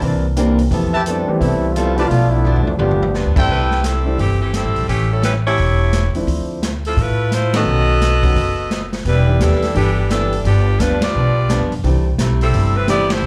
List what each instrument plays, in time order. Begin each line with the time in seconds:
0.01 upright bass C2, steel-string acoustic guitar C3 E3 A#3 D4, grand piano E3 A#3 C4 D4 A#4, kick, open hi-hat
0.36 steel-string acoustic guitar C3 E3 A#3 D4, grand piano E3 A#3 C4 D4 G4, closed hi-hat
0.58 open hi-hat
0.71 upright bass F2, grand piano E3 A3 B3 C4 G4, steel-string acoustic guitar F3 B3 E4 A4, kick, open hi-hat
0.93 trumpet section G4 B4 E5 A5
1.06 steel-string acoustic guitar F3 B3 E4 A4, trombone section G3 A3 C4 D4, closed hi-hat
1.28 grand piano E3 A3 B3 C4 G4, muted upright bass stroke
1.39 upright bass C2, steel-string acoustic guitar F3 B3 E4 A4, trombone section G3 A3 C4 E4, kick, open hi-hat
1.74 steel-string acoustic guitar F3 B3 E4 A4, trombone section G3 A3 C4 F4, closed hi-hat
1.96 trombone section E3 A3 C4 G4, grand piano F3 A3 B3 D4 F4, trumpet section F4 B4 D5 A5, open hi-hat
2.08 upright bass B1, steel-string acoustic guitar B2 F3 A3, trombone section A3 B3 D4 F4, kick, open hi-hat
2.12 steel-string acoustic guitar D4
2.30 trombone section A3 B3 D4 E4
2.45 steel-string acoustic guitar B2 F3 A3 D4, floor tom
2.56 floor tom
2.64 trombone section F3 A3 B3 D4, muted upright bass stroke, floor tom
2.77 upright bass G1, steel-string acoustic guitar G2 F3 B3, trombone section F3 B3 D4 G4, grand piano G3 A3 B3 D4 F4, high tom
2.82 steel-string acoustic guitar D4
2.91 floor tom
3.03 floor tom
3.14 steel-string acoustic guitar G2 F3 B3 D4, snare
3.25 upright bass D2
3.36 upright bass G2, grand piano G3 A3 C4 D4 E4, trumpet section C4 E4 A4 G5, kick, crash
3.49 upright bass C2, saxophone section A3 E4 G4 B4, kick
3.71 snare
3.84 saxophone section G3 C4 E4 A4, snare, closed hi-hat
4.05 grand piano G3 A3 C4 D4 E4
4.18 upright bass G1, saxophone section E3 A3 C4 G4, kick, open hi-hat
4.42 saxophone section E3 A3 C4 G4
4.53 saxophone section G3 C4 E4 A4, snare, closed hi-hat
4.64 upright bass A1
4.76 upright bass A#1, open hi-hat
4.88 upright bass A1, saxophone section E3 A3 C#4 G4, kick, open hi-hat
5.12 saxophone section G3 C#4 E4 A4
5.23 saxophone section G3 C#4 E4 B4, snare, closed hi-hat
5.46 saxophone section A3 E4 G4 C#5
5.57 upright bass E1, kick, open hi-hat
5.93 snare, closed hi-hat
6.15 grand piano F3 A3 C4 D4 E4, muted upright bass stroke, open hi-hat
6.27 upright bass D2, kick, open hi-hat
6.62 snare, closed hi-hat
6.85 saxophone section F3 C4 E4 A4, open hi-hat
6.97 upright bass A2, saxophone section B4, kick, open hi-hat
7.01 saxophone section A3 E4 F4
7.32 saxophone section A3 E4 F4 C5, snare, closed hi-hat
7.53 grand piano D#3 A3 B3 C#4 F#4, saxophone section B3 F#4 A4 D#5, snare, ride
7.66 upright bass B1
8.01 snare, closed hi-hat
8.23 grand piano D#3 A3 B3 C#4 F#4, kick, open hi-hat
8.36 upright bass F#1, kick, open hi-hat
8.71 snare, closed hi-hat
8.93 snare, open hi-hat
9.05 upright bass E1, steel-string acoustic guitar E3 B3 D4 G4, saxophone section G3 D4 E4 B4, kick, open hi-hat
9.27 grand piano E3 G3 B3 D4 G4
9.40 upright bass D#2, steel-string acoustic guitar E3 B3 D4 G4, saxophone section G3 D4 E4 A4, snare, closed hi-hat
9.51 snare
9.62 snare, open hi-hat
9.74 upright bass G1, steel-string acoustic guitar E3 B3 D4 G4, grand piano E3 G3 B3 D4 A4, saxophone section E3 B3 D4 G4, kick, open hi-hat
10.09 steel-string acoustic guitar E3 B3 D4 G4, saxophone section G3 D4 E4 A4, snare, closed hi-hat
10.32 open hi-hat
10.44 upright bass G1, steel-string acoustic guitar G2 F3 B3 D4, saxophone section F3 B3 D4 G4, kick, open hi-hat
10.79 upright bass D2, steel-string acoustic guitar G2 F3 B3 D4, saxophone section G3 D4 F4 B4, snare, closed hi-hat
11.01 saxophone section B3 F4 G4 D5, snare, ride
11.14 upright bass B1, steel-string acoustic guitar G2 F3 B3 D4
11.49 steel-string acoustic guitar G2 F3 B3 D4, snare, closed hi-hat
11.61 upright bass F2
11.72 upright bass G2, open hi-hat
11.84 upright bass C2, steel-string acoustic guitar C3 G3 A3 E4, grand piano E3 A3 C4 D4 G4, kick, open hi-hat
12.18 upright bass B1, steel-string acoustic guitar C3 G3 A3 E4, snare, closed hi-hat
12.41 saxophone section G3 C4 E4 A4, open hi-hat
12.53 upright bass G1, steel-string acoustic guitar C3 G3 A3 E4, kick, open hi-hat
12.77 saxophone section G3 C4 E4 B4
12.87 steel-string acoustic guitar C3 G3 A3 E4, grand piano E3 A3 C4 D4 G4, saxophone section B3 E4 G4 D5, snare, closed hi-hat
13.10 saxophone section A3 E4 G4 C5, snare, ride
13.22 upright bass C2, steel-string acoustic guitar C3 G3